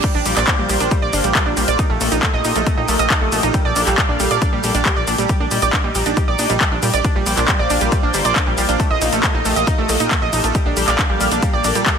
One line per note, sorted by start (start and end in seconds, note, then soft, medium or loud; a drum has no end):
0.00 0.11 G3 medium
0.00 5.25 A#3 medium
0.00 3.51 F4 medium
0.00 8.76 G4 medium
0.00 1.77 C5 medium
0.00 1.75 D5 medium
0.00 kick loud
0.00 closed hi-hat medium
0.00 ride medium
0.00 crash medium
0.00 shaker soft
0.15 0.22 A#1 medium
0.15 0.25 D4 medium
0.26 0.33 A#1 loud
0.26 0.33 G3 medium
0.26 open hi-hat loud
0.26 ride medium
0.26 shaker medium
0.37 0.44 A#1 medium
0.37 0.47 D5 loud
0.37 clap soft
0.37 closed hi-hat medium
0.37 shaker soft
0.48 0.58 D4 medium
0.48 kick loud
0.48 clap loud
0.48 closed hi-hat medium
0.48 ride medium
0.48 shaker soft
0.59 0.66 A#1 medium
0.59 0.66 G3 medium
0.69 0.77 A#1 loud
0.69 0.77 G3 medium
0.69 open hi-hat medium
0.69 ride medium
0.69 shaker medium
0.80 0.88 A#1 medium
0.80 0.91 D4 medium
0.80 closed hi-hat medium
0.80 shaker soft
0.91 0.98 G3 medium
0.91 kick loud
0.91 closed hi-hat medium
0.91 ride medium
0.91 shaker soft
1.02 1.10 A#1 medium
1.02 1.13 D5 loud
1.13 1.21 G1 medium
1.13 1.24 D4 medium
1.13 open hi-hat loud
1.13 ride medium
1.13 shaker medium
1.24 1.32 A#1 medium
1.24 1.31 G3 medium
1.24 closed hi-hat medium
1.24 shaker soft
1.35 1.42 G3 medium
1.35 kick loud
1.35 clap loud
1.35 closed hi-hat medium
1.35 ride medium
1.35 shaker soft
1.46 1.54 A#1 medium
1.46 1.56 D4 medium
1.57 1.65 A#1 loud
1.57 1.64 G3 medium
1.57 open hi-hat medium
1.57 ride medium
1.57 shaker medium
1.68 1.76 A#1 medium
1.68 1.78 D5 loud
1.68 closed hi-hat medium
1.68 shaker soft
1.79 1.89 D#4 medium
1.79 5.26 A4 medium
1.79 3.52 D#5 medium
1.79 kick loud
1.79 closed hi-hat medium
1.79 ride medium
1.79 shaker soft
1.90 1.98 A#1 medium
1.90 1.97 A3 medium
2.01 2.09 A#1 loud
2.01 2.08 A3 medium
2.01 open hi-hat loud
2.01 ride medium
2.01 shaker medium
2.12 2.20 A#1 medium
2.12 2.22 D#4 medium
2.12 closed hi-hat medium
2.12 shaker soft
2.23 2.30 A3 medium
2.23 kick loud
2.23 clap loud
2.23 closed hi-hat medium
2.23 ride medium
2.23 shaker soft
2.34 2.41 A#1 medium
2.34 2.44 D#5 loud
2.45 2.52 A#1 loud
2.45 2.55 D#4 medium
2.45 open hi-hat loud
2.45 ride medium
2.45 shaker medium
2.56 2.63 A#1 medium
2.56 2.63 A3 medium
2.56 closed hi-hat medium
2.56 shaker soft
2.66 2.74 A3 medium
2.66 kick loud
2.66 closed hi-hat medium
2.66 ride medium
2.66 shaker soft
2.77 2.85 A#1 medium
2.77 2.88 D#4 medium
2.88 2.96 A#1 loud
2.88 2.96 A3 medium
2.88 open hi-hat loud
2.88 ride medium
2.88 shaker medium
2.99 3.07 A#1 medium
2.99 3.10 D#5 loud
2.99 closed hi-hat medium
2.99 shaker soft
3.10 3.21 D#4 medium
3.10 kick loud
3.10 clap loud
3.10 closed hi-hat medium
3.10 ride medium
3.10 shaker soft
3.21 3.29 A#1 medium
3.21 3.28 A3 medium
3.32 3.40 A#1 loud
3.32 3.39 A3 medium
3.32 open hi-hat loud
3.32 ride medium
3.32 shaker medium
3.43 3.51 A#1 medium
3.43 3.54 D#4 medium
3.43 closed hi-hat medium
3.43 shaker soft
3.54 3.61 G3 medium
3.54 7.01 D5 medium
3.54 5.28 F5 loud
3.54 kick loud
3.54 closed hi-hat medium
3.54 ride medium
3.54 shaker soft
3.65 3.73 A#1 medium
3.65 3.75 D5 loud
3.76 3.84 A#1 loud
3.76 3.86 D4 medium
3.76 open hi-hat loud
3.76 ride medium
3.76 shaker medium
3.87 3.95 A#1 medium
3.87 3.94 G3 medium
3.87 clap soft
3.87 closed hi-hat medium
3.87 shaker soft
3.98 4.05 G3 medium
3.98 kick loud
3.98 clap loud
3.98 closed hi-hat medium
3.98 ride medium
3.98 shaker soft
4.09 4.17 A#1 medium
4.09 4.19 D4 medium
4.20 4.28 A#1 medium
4.20 4.27 G3 medium
4.20 open hi-hat medium
4.20 ride medium
4.20 shaker medium
4.31 4.39 A#1 loud
4.31 4.41 D5 loud
4.31 closed hi-hat medium
4.31 shaker soft
4.42 4.52 D4 medium
4.42 kick loud
4.42 closed hi-hat medium
4.42 ride medium
4.42 shaker soft
4.53 4.60 A#1 medium
4.53 4.60 G3 medium
4.64 4.71 A#1 medium
4.64 4.71 G3 medium
4.64 open hi-hat loud
4.64 ride medium
4.64 shaker medium
4.75 4.82 A#1 medium
4.75 4.85 D4 medium
4.75 closed hi-hat medium
4.75 shaker soft
4.86 4.93 G3 medium
4.86 kick loud
4.86 clap loud
4.86 closed hi-hat medium
4.86 ride medium
4.86 shaker soft
4.96 5.04 A#1 medium
4.96 5.07 D5 loud
5.07 5.15 A#1 loud
5.07 5.18 D4 medium
5.07 open hi-hat loud
5.07 ride medium
5.07 shaker medium
5.18 5.26 A#1 medium
5.18 5.25 G3 medium
5.18 closed hi-hat medium
5.18 shaker soft
5.29 5.36 G3 medium
5.29 7.03 D#4 medium
5.29 kick loud
5.29 closed hi-hat medium
5.29 ride medium
5.29 shaker soft
5.40 5.48 A#1 medium
5.40 5.51 D4 medium
5.51 5.59 A#1 loud
5.51 5.58 G3 medium
5.51 open hi-hat loud
5.51 ride medium
5.51 shaker medium
5.62 5.70 A#1 loud
5.62 5.73 D5 medium
5.62 closed hi-hat medium
5.62 shaker soft
5.73 5.84 D4 medium
5.73 kick loud
5.73 clap loud
5.73 closed hi-hat medium
5.73 ride medium
5.73 shaker soft
5.84 5.92 A#1 medium
5.84 5.91 G3 medium
5.95 6.03 A#1 loud
5.95 6.02 G3 medium
5.95 open hi-hat medium
5.95 ride medium
5.95 shaker medium
6.06 6.14 A#1 medium
6.06 6.16 D4 medium
6.06 closed hi-hat medium
6.06 shaker soft
6.17 6.24 G3 medium
6.17 kick loud
6.17 closed hi-hat medium
6.17 ride medium
6.17 shaker soft
6.28 6.36 A#1 medium
6.28 6.38 D5 loud
6.39 6.47 A#1 loud
6.39 6.49 D4 medium
6.39 open hi-hat loud
6.39 ride medium
6.39 shaker medium
6.50 6.58 A#1 medium
6.50 6.57 G3 medium
6.50 closed hi-hat medium
6.50 shaker soft
6.61 6.68 G3 medium
6.61 kick loud
6.61 clap loud
6.61 closed hi-hat medium
6.61 ride medium
6.61 shaker soft
6.72 6.79 A#1 medium
6.72 6.82 D4 medium
6.83 6.90 A#2 loud
6.83 6.90 G3 medium
6.83 open hi-hat loud
6.83 ride medium
6.83 shaker medium
6.94 7.01 A#1 medium
6.94 7.04 D5 loud
6.94 closed hi-hat medium
6.94 shaker soft
7.04 10.51 A#3 medium
7.04 7.15 D4 medium
7.04 10.51 F4 medium
7.04 8.78 C5 medium
7.04 8.78 D5 loud
7.04 kick loud
7.04 closed hi-hat medium
7.04 ride medium
7.04 shaker soft
7.15 7.23 A#1 medium
7.15 7.23 G3 medium
7.26 7.34 A#1 loud
7.26 7.33 G3 medium
7.26 open hi-hat loud
7.26 ride medium
7.26 shaker medium
7.37 7.45 A#1 medium
7.37 7.48 D4 medium
7.37 clap soft
7.37 closed hi-hat medium
7.37 shaker soft
7.48 7.55 G3 medium
7.48 kick loud
7.48 clap loud
7.48 closed hi-hat medium
7.48 ride medium
7.48 shaker soft
7.59 7.67 A#1 medium
7.59 7.70 D5 loud
7.70 7.78 A#1 loud
7.70 7.81 D4 medium
7.70 open hi-hat medium
7.70 ride medium
7.70 shaker medium
7.81 7.89 A#1 medium
7.81 7.88 G3 medium
7.81 closed hi-hat medium
7.81 shaker soft
7.92 7.99 G3 medium
7.92 kick loud
7.92 closed hi-hat medium
7.92 ride medium
7.92 shaker soft
8.03 8.11 A#1 medium
8.03 8.13 D4 medium
8.14 8.22 G1 loud
8.14 8.21 G3 medium
8.14 open hi-hat loud
8.14 ride medium
8.14 shaker medium
8.25 8.33 A#1 medium
8.25 8.35 D5 loud
8.25 closed hi-hat medium
8.25 shaker soft
8.36 8.46 D4 medium
8.36 kick loud
8.36 clap loud
8.36 closed hi-hat medium
8.36 ride medium
8.36 shaker soft
8.47 8.55 A#1 medium
8.47 8.54 G3 medium
8.58 8.66 A#1 loud
8.58 8.65 G3 medium
8.58 open hi-hat medium
8.58 ride medium
8.58 shaker medium
8.69 8.76 A#1 medium
8.69 8.79 D4 medium
8.69 closed hi-hat medium
8.69 shaker soft
8.80 8.87 A3 medium
8.80 11.98 G4 medium
8.80 11.98 A4 medium
8.80 10.53 D#5 loud
8.80 kick loud
8.80 closed hi-hat medium
8.80 ride medium
8.80 shaker soft
8.91 8.98 A#1 medium
8.91 9.01 D#5 loud
9.02 9.09 A#1 loud
9.02 9.12 D#4 medium
9.02 open hi-hat loud
9.02 ride medium
9.02 shaker medium
9.13 9.20 A#1 medium
9.13 9.20 A3 medium
9.13 closed hi-hat medium
9.13 shaker soft
9.23 9.31 A3 medium
9.23 kick loud
9.23 clap loud
9.23 closed hi-hat medium
9.23 ride medium
9.23 shaker soft
9.34 9.42 A#1 medium
9.34 9.45 D#4 medium
9.45 9.53 A#1 loud
9.45 9.52 A3 medium
9.45 open hi-hat medium
9.45 ride medium
9.45 shaker medium
9.56 9.64 A#1 medium
9.56 9.67 D#5 loud
9.56 closed hi-hat medium
9.56 shaker soft
9.67 9.78 D#4 medium
9.67 kick loud
9.67 closed hi-hat medium
9.67 ride medium
9.67 shaker soft
9.78 9.86 A#1 medium
9.78 9.85 A3 medium
9.89 9.97 A#1 medium
9.89 9.96 A3 medium
9.89 open hi-hat loud
9.89 ride medium
9.89 shaker medium
10.00 10.08 A#1 medium
10.00 10.11 D#4 medium
10.00 closed hi-hat medium
10.00 shaker soft
10.11 10.18 A3 medium
10.11 kick loud
10.11 clap loud
10.11 closed hi-hat medium
10.11 ride medium
10.11 shaker soft
10.22 10.30 A#1 medium
10.22 10.32 D#5 loud
10.33 10.41 A#1 loud
10.33 10.43 D#4 medium
10.33 open hi-hat medium
10.33 ride medium
10.33 shaker medium
10.44 10.52 A#1 medium
10.44 10.51 A3 medium
10.44 closed hi-hat medium
10.44 shaker soft
10.55 10.62 G3 medium
10.55 11.98 A#3 medium
10.55 11.98 D5 medium
10.55 11.98 F5 loud
10.55 kick loud
10.55 closed hi-hat medium
10.55 ride medium
10.55 shaker soft
10.66 10.74 A#1 medium
10.66 10.76 D4 medium
10.77 10.84 A#1 loud
10.77 10.84 G3 medium
10.77 open hi-hat loud
10.77 ride medium
10.77 shaker medium
10.88 10.95 A#1 medium
10.88 10.98 D5 loud
10.88 clap soft
10.88 closed hi-hat medium
10.88 shaker soft
10.99 11.09 D4 medium
10.99 kick loud
10.99 clap loud
10.99 closed hi-hat medium
10.99 ride medium
10.99 shaker soft
11.10 11.17 A#1 medium
11.10 11.17 G3 medium
11.21 11.28 A#1 medium
11.21 11.28 G3 medium
11.21 open hi-hat medium
11.21 ride medium
11.21 shaker medium
11.32 11.39 A#1 loud
11.32 11.42 D4 medium
11.32 closed hi-hat medium
11.32 shaker soft
11.43 11.50 G3 medium
11.43 kick loud
11.43 closed hi-hat medium
11.43 ride medium
11.43 shaker soft
11.53 11.61 A#1 medium
11.53 11.64 D5 loud
11.64 11.72 A#1 loud
11.64 11.75 D4 medium
11.64 open hi-hat loud
11.64 ride medium
11.64 shaker medium
11.75 11.83 A#1 medium
11.75 11.82 G3 medium
11.75 closed hi-hat medium
11.75 shaker soft
11.86 11.93 G3 medium
11.86 kick loud
11.86 clap loud
11.86 closed hi-hat medium
11.86 ride medium
11.86 shaker soft